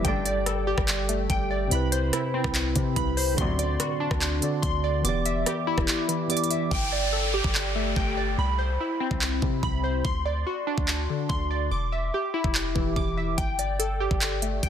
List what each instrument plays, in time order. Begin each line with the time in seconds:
0.01 808-style bass G1, string section A1 G2 D3, tine electric piano G3 G4, synth keys G5, kick, closed hi-hat
0.06 tine electric piano A4 D5
0.26 synth keys D5, closed hi-hat
0.46 synth keys A4, cross-stick, closed hi-hat
0.67 synth keys G4
0.78 808-style bass G1, kick, cross-stick
0.88 clap, closed hi-hat
1.09 synth keys A3, closed hi-hat
1.30 808-style bass G1, synth keys G5, kick, closed hi-hat
1.51 synth keys D5
1.68 808-style bass C2, tine electric piano C3 C4, closed hi-hat
1.72 tine electric piano E4 B4, synth keys B5
1.92 synth keys C5, closed hi-hat
2.13 synth keys E4, cross-stick, closed hi-hat
2.34 synth keys C4
2.44 808-style bass C2, kick, cross-stick
2.55 clap, closed hi-hat
2.76 808-style bass C3, synth keys C3, kick, closed hi-hat
2.95 808-style bass C2, tine electric piano C3 C4 E4 B4, synth keys B5, kick, closed hi-hat
3.17 synth keys C5, open hi-hat
3.34 string section A1 F#2 C3, 808-style bass D2, tine electric piano D3 C4, synth keys C6, kick, closed hi-hat
3.39 tine electric piano F#4 D5
3.59 synth keys D5, closed hi-hat
3.80 synth keys F#4, cross-stick, closed hi-hat
4.00 synth keys D4
4.11 808-style bass D2, kick, cross-stick
4.21 clap, closed hi-hat
4.40 tine electric piano D3 C4 F#4 D5, synth keys D3, closed hi-hat
4.62 808-style bass D2, synth keys C6, kick, closed hi-hat
4.84 synth keys D5
5.01 808-style bass E1, tine electric piano E3 B3, synth keys D6, closed hi-hat
5.06 tine electric piano G4 D5
5.26 synth keys E5, closed hi-hat
5.46 synth keys G4, cross-stick, closed hi-hat
5.67 synth keys E4
5.78 808-style bass E1, kick, cross-stick
5.88 clap, closed hi-hat
6.08 synth keys E3, closed hi-hat
6.28 tine electric piano E3 B3 G4 D5, synth keys D6, closed hi-hat
6.37 closed hi-hat
6.44 closed hi-hat
6.51 synth keys E5, closed hi-hat
6.71 808-style bass G1, synth keys G5, kick, downlifter
6.92 synth keys D5
7.13 synth keys A4
7.34 synth keys G4
7.44 808-style bass G1, kick
7.55 clap
7.75 synth keys A3
7.96 808-style bass G1, synth keys G5, kick
8.17 synth keys D5
8.38 808-style bass C2, synth keys B5
8.59 synth keys C5
8.80 synth keys E4
9.00 synth keys C4
9.11 808-style bass C2, kick
9.21 clap
9.42 808-style bass C3, synth keys C3, kick
9.63 808-style bass C2, synth keys B5, kick
9.84 synth keys C5
10.04 808-style bass D2, synth keys C6, kick
10.25 synth keys D5
10.46 synth keys F#4
10.67 synth keys D4
10.78 808-style bass D2, kick
10.88 clap
11.10 synth keys D3
11.29 808-style bass D2, synth keys C6, kick
11.51 synth keys D5
11.71 808-style bass E1, synth keys D6
11.92 synth keys E5
12.14 synth keys G4
12.34 synth keys E4
12.44 808-style bass E1, kick
12.55 clap
12.75 808-style bass E1, synth keys E3, kick
12.96 808-style bass E1, synth keys D6, kick
13.17 synth keys E5
13.38 808-style bass G1, synth keys G5, kick, closed hi-hat
13.59 synth keys D5, closed hi-hat
13.79 synth keys A4, closed hi-hat
14.00 synth keys G4
14.11 808-style bass G1, kick
14.21 clap, closed hi-hat
14.42 synth keys A3, closed hi-hat
14.63 808-style bass G1, synth keys G5, kick, closed hi-hat